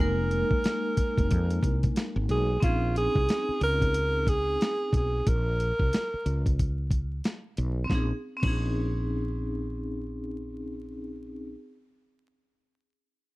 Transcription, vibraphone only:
0, 0, Header, 1, 2, 480
1, 0, Start_track
1, 0, Key_signature, -5, "minor"
1, 0, Tempo, 659341
1, 1907, Time_signature, 4, 2, 24, 8
1, 9724, End_track
2, 0, Start_track
2, 0, Title_t, "Vibraphone"
2, 0, Program_c, 0, 11
2, 0, Note_on_c, 0, 56, 62
2, 0, Note_on_c, 0, 58, 59
2, 0, Note_on_c, 0, 63, 57
2, 9, Note_on_c, 0, 70, 72
2, 1870, Note_off_c, 0, 56, 0
2, 1876, Note_off_c, 0, 58, 0
2, 1883, Note_off_c, 0, 63, 0
2, 1889, Note_off_c, 0, 70, 0
2, 1896, Note_on_c, 0, 60, 61
2, 1908, Note_on_c, 0, 61, 59
2, 1921, Note_on_c, 0, 63, 57
2, 1935, Note_on_c, 0, 68, 68
2, 3792, Note_off_c, 0, 60, 0
2, 3798, Note_off_c, 0, 61, 0
2, 3805, Note_off_c, 0, 63, 0
2, 3812, Note_off_c, 0, 68, 0
2, 5711, Note_on_c, 0, 60, 74
2, 5735, Note_on_c, 0, 61, 65
2, 5762, Note_on_c, 0, 63, 63
2, 5787, Note_on_c, 0, 68, 76
2, 5882, Note_off_c, 0, 60, 0
2, 5895, Note_off_c, 0, 61, 0
2, 5909, Note_off_c, 0, 63, 0
2, 5923, Note_off_c, 0, 68, 0
2, 6091, Note_on_c, 0, 60, 70
2, 6117, Note_on_c, 0, 61, 68
2, 6144, Note_on_c, 0, 63, 68
2, 6168, Note_on_c, 0, 68, 77
2, 8358, Note_off_c, 0, 60, 0
2, 8384, Note_off_c, 0, 61, 0
2, 8411, Note_off_c, 0, 63, 0
2, 8435, Note_off_c, 0, 68, 0
2, 9724, End_track
0, 0, End_of_file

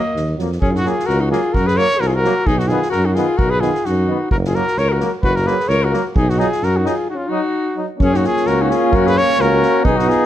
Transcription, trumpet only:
0, 0, Header, 1, 2, 480
1, 0, Start_track
1, 0, Tempo, 461538
1, 635, Time_signature, 2, 2, 24, 8
1, 10668, End_track
2, 0, Start_track
2, 0, Title_t, "Trumpet"
2, 0, Program_c, 0, 56
2, 0, Note_on_c, 0, 75, 78
2, 376, Note_off_c, 0, 75, 0
2, 635, Note_on_c, 0, 68, 76
2, 767, Note_off_c, 0, 68, 0
2, 767, Note_on_c, 0, 68, 45
2, 801, Note_on_c, 0, 66, 83
2, 817, Note_off_c, 0, 68, 0
2, 884, Note_on_c, 0, 68, 81
2, 899, Note_off_c, 0, 66, 0
2, 1105, Note_on_c, 0, 70, 90
2, 1120, Note_off_c, 0, 68, 0
2, 1243, Note_on_c, 0, 66, 69
2, 1258, Note_off_c, 0, 70, 0
2, 1353, Note_off_c, 0, 66, 0
2, 1359, Note_on_c, 0, 68, 81
2, 1593, Note_on_c, 0, 70, 87
2, 1609, Note_off_c, 0, 68, 0
2, 1735, Note_on_c, 0, 71, 96
2, 1751, Note_off_c, 0, 70, 0
2, 1844, Note_on_c, 0, 73, 112
2, 1860, Note_off_c, 0, 71, 0
2, 2085, Note_on_c, 0, 70, 94
2, 2101, Note_off_c, 0, 73, 0
2, 2155, Note_on_c, 0, 68, 71
2, 2171, Note_off_c, 0, 70, 0
2, 2231, Note_on_c, 0, 70, 94
2, 2246, Note_off_c, 0, 68, 0
2, 2565, Note_on_c, 0, 68, 91
2, 2581, Note_off_c, 0, 70, 0
2, 2689, Note_on_c, 0, 66, 81
2, 2704, Note_off_c, 0, 68, 0
2, 2791, Note_on_c, 0, 68, 86
2, 2806, Note_off_c, 0, 66, 0
2, 3027, Note_off_c, 0, 68, 0
2, 3033, Note_on_c, 0, 70, 88
2, 3179, Note_on_c, 0, 66, 67
2, 3195, Note_off_c, 0, 70, 0
2, 3279, Note_on_c, 0, 68, 76
2, 3294, Note_off_c, 0, 66, 0
2, 3514, Note_on_c, 0, 70, 88
2, 3529, Note_off_c, 0, 68, 0
2, 3646, Note_on_c, 0, 71, 96
2, 3661, Note_off_c, 0, 70, 0
2, 3749, Note_on_c, 0, 68, 94
2, 3765, Note_off_c, 0, 71, 0
2, 4011, Note_on_c, 0, 66, 76
2, 4026, Note_off_c, 0, 68, 0
2, 4482, Note_off_c, 0, 66, 0
2, 4488, Note_on_c, 0, 70, 88
2, 4546, Note_off_c, 0, 70, 0
2, 4646, Note_on_c, 0, 68, 74
2, 4733, Note_on_c, 0, 70, 90
2, 4749, Note_off_c, 0, 68, 0
2, 4974, Note_on_c, 0, 73, 84
2, 4989, Note_off_c, 0, 70, 0
2, 5086, Note_on_c, 0, 70, 74
2, 5102, Note_off_c, 0, 73, 0
2, 5330, Note_off_c, 0, 70, 0
2, 5437, Note_on_c, 0, 71, 94
2, 5573, Note_on_c, 0, 70, 84
2, 5589, Note_off_c, 0, 71, 0
2, 5690, Note_on_c, 0, 71, 84
2, 5705, Note_off_c, 0, 70, 0
2, 5910, Note_on_c, 0, 73, 83
2, 5925, Note_off_c, 0, 71, 0
2, 6061, Note_on_c, 0, 70, 76
2, 6077, Note_off_c, 0, 73, 0
2, 6298, Note_off_c, 0, 70, 0
2, 6407, Note_on_c, 0, 68, 85
2, 6545, Note_on_c, 0, 66, 79
2, 6561, Note_off_c, 0, 68, 0
2, 6645, Note_on_c, 0, 68, 86
2, 6660, Note_off_c, 0, 66, 0
2, 6906, Note_on_c, 0, 70, 86
2, 6922, Note_off_c, 0, 68, 0
2, 7039, Note_on_c, 0, 66, 70
2, 7054, Note_off_c, 0, 70, 0
2, 7147, Note_on_c, 0, 68, 70
2, 7163, Note_off_c, 0, 66, 0
2, 7374, Note_off_c, 0, 68, 0
2, 7381, Note_on_c, 0, 66, 65
2, 7459, Note_on_c, 0, 65, 65
2, 7475, Note_off_c, 0, 66, 0
2, 7590, Note_on_c, 0, 66, 81
2, 7606, Note_off_c, 0, 65, 0
2, 8115, Note_off_c, 0, 66, 0
2, 8350, Note_on_c, 0, 68, 93
2, 8491, Note_on_c, 0, 66, 72
2, 8506, Note_off_c, 0, 68, 0
2, 8593, Note_on_c, 0, 68, 104
2, 8609, Note_off_c, 0, 66, 0
2, 8808, Note_on_c, 0, 70, 86
2, 8823, Note_off_c, 0, 68, 0
2, 8966, Note_on_c, 0, 66, 79
2, 8982, Note_off_c, 0, 70, 0
2, 9054, Note_on_c, 0, 68, 75
2, 9070, Note_off_c, 0, 66, 0
2, 9285, Note_on_c, 0, 70, 87
2, 9301, Note_off_c, 0, 68, 0
2, 9441, Note_on_c, 0, 71, 104
2, 9457, Note_off_c, 0, 70, 0
2, 9546, Note_on_c, 0, 73, 110
2, 9561, Note_off_c, 0, 71, 0
2, 9789, Note_on_c, 0, 70, 97
2, 9805, Note_off_c, 0, 73, 0
2, 10243, Note_off_c, 0, 70, 0
2, 10250, Note_on_c, 0, 68, 87
2, 10366, Note_on_c, 0, 66, 79
2, 10381, Note_off_c, 0, 68, 0
2, 10495, Note_on_c, 0, 68, 90
2, 10511, Note_off_c, 0, 66, 0
2, 10668, Note_off_c, 0, 68, 0
2, 10668, End_track
0, 0, End_of_file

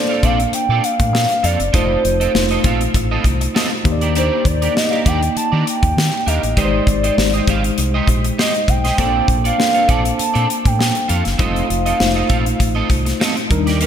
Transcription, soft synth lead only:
0, 0, Header, 1, 2, 480
1, 0, Start_track
1, 0, Key_signature, -2, "major"
1, 0, Tempo, 603622
1, 1383, Time_signature, 4, 2, 24, 8
1, 11025, End_track
2, 0, Start_track
2, 0, Title_t, "Soft synth lead"
2, 0, Program_c, 0, 80
2, 0, Note_on_c, 0, 74, 95
2, 194, Note_on_c, 0, 77, 90
2, 206, Note_off_c, 0, 74, 0
2, 426, Note_off_c, 0, 77, 0
2, 431, Note_on_c, 0, 79, 116
2, 667, Note_on_c, 0, 77, 107
2, 679, Note_off_c, 0, 79, 0
2, 1148, Note_on_c, 0, 74, 93
2, 1160, Note_off_c, 0, 77, 0
2, 1389, Note_on_c, 0, 72, 94
2, 1401, Note_off_c, 0, 74, 0
2, 2346, Note_off_c, 0, 72, 0
2, 3319, Note_on_c, 0, 72, 92
2, 3557, Note_on_c, 0, 74, 92
2, 3569, Note_off_c, 0, 72, 0
2, 3796, Note_on_c, 0, 75, 98
2, 3808, Note_off_c, 0, 74, 0
2, 4037, Note_on_c, 0, 79, 94
2, 4049, Note_off_c, 0, 75, 0
2, 4267, Note_off_c, 0, 79, 0
2, 4272, Note_on_c, 0, 81, 116
2, 4378, Note_off_c, 0, 81, 0
2, 4511, Note_on_c, 0, 79, 103
2, 4989, Note_on_c, 0, 75, 87
2, 5000, Note_off_c, 0, 79, 0
2, 5227, Note_on_c, 0, 74, 90
2, 5239, Note_off_c, 0, 75, 0
2, 6185, Note_off_c, 0, 74, 0
2, 6678, Note_on_c, 0, 75, 90
2, 6912, Note_on_c, 0, 79, 94
2, 6924, Note_off_c, 0, 75, 0
2, 7143, Note_off_c, 0, 79, 0
2, 7148, Note_on_c, 0, 79, 106
2, 7489, Note_off_c, 0, 79, 0
2, 7524, Note_on_c, 0, 77, 96
2, 7869, Note_on_c, 0, 81, 109
2, 7881, Note_off_c, 0, 77, 0
2, 8484, Note_on_c, 0, 79, 96
2, 8495, Note_off_c, 0, 81, 0
2, 8815, Note_off_c, 0, 79, 0
2, 8820, Note_on_c, 0, 77, 86
2, 8928, Note_off_c, 0, 77, 0
2, 9069, Note_on_c, 0, 77, 104
2, 10471, Note_off_c, 0, 77, 0
2, 10989, Note_on_c, 0, 70, 88
2, 11025, Note_off_c, 0, 70, 0
2, 11025, End_track
0, 0, End_of_file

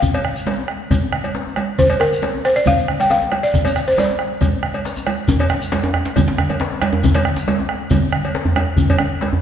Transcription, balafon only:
0, 0, Header, 1, 2, 480
1, 0, Start_track
1, 0, Tempo, 437318
1, 33, Time_signature, 4, 2, 24, 8
1, 10335, End_track
2, 0, Start_track
2, 0, Title_t, "Balafon"
2, 0, Program_c, 0, 12
2, 0, Note_on_c, 0, 77, 81
2, 834, Note_off_c, 0, 77, 0
2, 1961, Note_on_c, 0, 72, 90
2, 2070, Note_off_c, 0, 72, 0
2, 2194, Note_on_c, 0, 70, 72
2, 2691, Note_on_c, 0, 72, 78
2, 2695, Note_off_c, 0, 70, 0
2, 2745, Note_off_c, 0, 72, 0
2, 2810, Note_on_c, 0, 74, 81
2, 2930, Note_off_c, 0, 74, 0
2, 2934, Note_on_c, 0, 77, 96
2, 3269, Note_off_c, 0, 77, 0
2, 3299, Note_on_c, 0, 79, 88
2, 3410, Note_on_c, 0, 77, 86
2, 3415, Note_off_c, 0, 79, 0
2, 3768, Note_on_c, 0, 74, 88
2, 3784, Note_off_c, 0, 77, 0
2, 4216, Note_off_c, 0, 74, 0
2, 4255, Note_on_c, 0, 72, 81
2, 4307, Note_off_c, 0, 72, 0
2, 4383, Note_on_c, 0, 74, 81
2, 5292, Note_off_c, 0, 74, 0
2, 10335, End_track
0, 0, End_of_file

